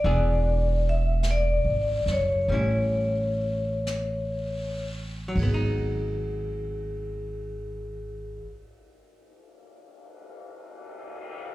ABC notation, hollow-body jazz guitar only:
X:1
M:4/4
L:1/8
Q:"Swing" 1/4=39
K:G#m
V:1 name="Hollow-body jazz guitar"
[E,B,=DG]4 [=G,CE]4 | [F,B,D]8 |]